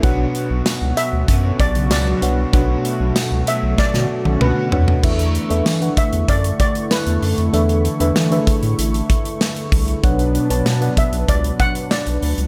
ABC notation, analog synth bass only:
X:1
M:4/4
L:1/16
Q:1/4=96
K:Edor
V:1 name="Analog synth bass" clef=bass
B,,,2 z B,,, z C,, z D,, F,,2 B,,,2 C,,2 =C,,2 | B,,,2 z B,,, z C,, z B,,, B,, B,, z B,,, C,, z ^E,,2 | E,,3 E,, E,2 z E,, F,,2 z3 E,, F,, ^E,, | E,,3 E,, E,2 z A,, A,,,2 z4 =C,,2 |
B,,,3 B,,, B,,2 z B,,, C,,2 z3 B,,, D,, C,, |]